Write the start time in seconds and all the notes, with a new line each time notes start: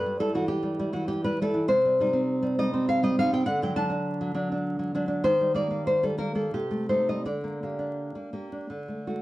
Already playing: G2 B4
0.06 G3
0.20 G3 E4 A4
0.35 E3 F#4
0.48 G4
0.63 G3
0.79 G3 E4
0.93 E3 F#4
1.08 G4
1.24 G3 B4
1.42 G3 E4 A4
1.54 E3
1.68 C3 C5
1.85 G3
2.00 G3 D#4
2.13 C4
2.43 G3
2.59 G3 D#4 D#5
2.73 C4
2.89 F5
3.03 G3 D#5
3.19 G3 D#4 F5
3.33 C4 G5
3.46 D3 F#5
3.62 F#3 G5
3.76 F#3 D4 A5
3.90 D4
4.21 F#3
4.35 F#3 D4
4.52 D4
4.79 F#3
4.95 F#3 D4
5.08 D4
5.24 D#3 C5
5.41 G3
5.54 G3 A#3 D5
5.71 A#3
5.87 C5
6.03 G3 A4
6.18 G3 A#3 A#4
6.35 A#3 A4
6.54 C3 G4
6.71 A3
6.89 A3 D#4 C5
7.09 G3 D#5
7.25 D3 D5
7.44 A#3
7.63 A#3 G4
7.79 D4
8.15 A#3
8.33 A#3 G4
8.52 D4
8.70 D3
8.88 A3
9.07 A3 F#4